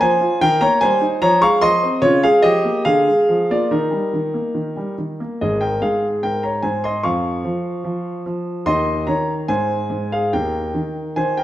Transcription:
0.01 0.23 F3 medium
0.01 0.40 C5 medium
0.01 0.38 G#5 loud
0.21 0.42 F4 medium
0.41 0.62 D#3 medium
0.41 0.61 A#4 medium
0.41 0.62 G5 loud
0.61 0.83 A#3 medium
0.61 0.81 C#5 medium
0.61 0.82 A#5 loud
0.81 1.04 G3 medium
0.81 1.20 C5 medium
0.81 1.06 G#5 loud
1.01 1.22 D#4 medium
1.22 1.42 F3 medium
1.22 1.41 C#5 medium
1.22 1.43 A#5 loud
1.41 1.63 G#3 medium
1.41 1.62 F5 medium
1.41 1.63 C#6 loud
1.61 1.84 F3 medium
1.61 2.01 D#5 medium
1.61 1.86 C6 loud
1.83 2.04 C4 medium
2.02 2.23 C#3 medium
2.02 2.23 F4 medium
2.02 2.23 C#5 loud
2.23 2.45 G#3 medium
2.23 2.44 G#4 medium
2.23 2.45 F5 loud
2.42 2.66 F3 medium
2.42 2.83 G4 medium
2.42 2.85 D#5 loud
2.65 2.86 A#3 medium
2.85 3.06 D3 medium
2.85 3.45 G#4 medium
2.85 3.48 F5 loud
3.07 3.29 G#3 soft
3.29 3.50 F3 soft
3.50 3.71 A#3 soft
3.50 3.70 F4 medium
3.50 3.71 D5 medium
3.71 3.91 D#3 medium
3.71 4.94 D#4 medium
3.71 4.93 A#4 medium
3.91 4.13 G3 soft
4.13 4.35 D#3 soft
4.34 4.56 A#3 soft
4.55 4.75 D#3 medium
4.77 4.98 G3 soft
4.98 5.20 D#3 soft
5.20 5.40 A#3 soft
5.41 5.80 G#1 soft
5.41 5.80 G#2 soft
5.41 5.60 G#4 medium
5.41 5.61 D#5 medium
5.61 5.80 A#4 medium
5.61 5.81 G5 medium
5.81 6.21 G#2 soft
5.81 6.20 G#4 medium
5.81 6.06 F5 medium
6.23 6.62 G#2 soft
6.23 6.42 A#4 medium
6.23 6.43 G5 medium
6.43 6.63 C#5 medium
6.43 6.63 A#5 medium
6.62 7.03 G#2 soft
6.62 6.82 C5 medium
6.62 6.83 G#5 medium
6.84 7.03 D#5 medium
6.84 7.04 C6 medium
7.03 7.44 F2 soft
7.03 7.43 F3 medium
7.03 8.22 F5 medium
7.03 8.21 C#6 medium
7.44 7.83 F3 medium
7.84 8.24 F3 medium
8.26 8.65 F3 medium
8.66 9.05 D#2 medium
8.66 9.05 D#3 medium
8.66 9.04 D#5 medium
8.66 9.03 C6 loud
9.07 9.47 D#3 medium
9.07 9.46 C#5 medium
9.07 9.31 A#5 medium
9.48 9.88 G#2 medium
9.48 10.06 C5 medium
9.48 10.10 G#5 medium
9.90 10.29 G#2 medium
10.12 10.30 G#4 medium
10.12 10.32 F5 medium
10.33 10.72 D#2 medium
10.33 10.72 D#3 medium
10.33 11.12 A#4 medium
10.33 11.11 G5 medium
10.74 11.14 D#3 soft
11.16 11.44 D#3 soft
11.16 11.35 C5 medium
11.16 11.36 G#5 medium
11.37 11.44 A#4 medium
11.37 11.44 G5 medium

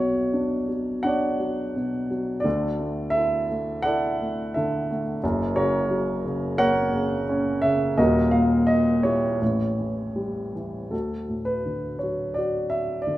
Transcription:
0.00 2.41 B1 soft
0.00 1.74 B2 medium
0.00 0.67 F#3 soft
0.00 1.37 F#4 medium
0.00 1.05 C#5 medium
0.33 1.03 D4 soft
0.69 1.38 F#3 soft
1.03 2.41 D4 medium
1.03 2.42 C#5 medium
1.03 2.48 F#5 medium
1.07 2.39 D5 medium
1.39 2.09 F#3 soft
1.76 2.43 B2 soft
2.11 2.44 F#3 medium
2.40 3.13 A4 medium
2.40 3.14 D5 medium
2.44 5.18 D2 medium
2.44 4.55 D3 medium
2.79 3.48 A3 soft
3.10 3.85 E5 medium
3.14 3.85 E4 medium
3.14 3.84 A4 medium
3.50 4.19 A3 soft
3.82 4.54 A4 medium
3.82 5.19 D5 medium
3.82 4.56 F#5 medium
3.87 5.19 E4 medium
4.20 4.89 A3 soft
4.54 5.22 D3 medium
4.54 5.19 A4 medium
4.54 5.02 E5 medium
4.90 5.22 A3 medium
5.23 7.94 F#1 medium
5.23 7.94 F#2 medium
5.56 6.24 C#3 medium
5.56 6.89 F#4 medium
5.56 6.57 A#4 medium
5.56 6.57 C#5 medium
5.90 7.24 F#3 medium
6.25 6.92 C#3 medium
6.58 7.94 A#3 medium
6.58 7.94 A#4 medium
6.58 7.94 C#5 medium
6.58 7.66 F#5 loud
6.93 7.63 C#3 medium
7.29 7.96 C#4 medium
7.62 7.97 C#3 medium
7.62 7.98 E5 medium
7.97 9.37 D#1 medium
7.97 9.37 D#2 medium
7.97 9.38 F#4 medium
7.97 9.38 A#4 medium
7.97 8.30 D#5 medium
8.31 9.02 A#2 medium
8.31 8.68 F5 medium
8.67 9.01 D#5 medium
9.03 9.40 A#2 soft
9.03 10.52 E4 soft
9.03 10.52 G4 soft
9.03 10.52 C#5 medium
9.42 10.89 A1 soft
9.42 10.89 A2 medium
9.79 10.53 E3 soft
10.16 10.90 G3 soft
10.55 10.91 E3 soft
10.91 13.18 D2 soft
10.91 12.34 F#4 soft
10.91 11.43 A4 medium
11.28 12.68 A2 soft
11.45 11.97 B4 medium
11.66 13.03 D3 soft
11.99 12.37 C#5 medium
12.03 13.18 F#3 soft
12.34 12.72 D5 medium
12.38 13.18 F#4 soft
12.70 13.07 E5 medium
13.02 13.18 D5 medium
13.07 13.18 D3 soft

